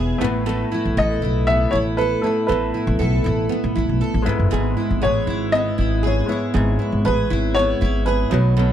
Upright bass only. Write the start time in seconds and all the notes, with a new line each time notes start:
Already playing: E1
0.22 A1
0.85 A1
0.97 A1
1.23 B1
1.73 A1
2.50 A1
2.87 A1
3.00 B1
3.26 A1
3.64 A2
3.76 A1
3.89 B1
4.14 A1
4.27 G#1
4.39 F#1
4.53 G#1
4.91 G#1
5.03 A1
5.27 G#1
5.79 G#1
6.55 G#1
6.92 G#1
7.06 A1
7.31 G#1
7.82 G#1
8.32 B1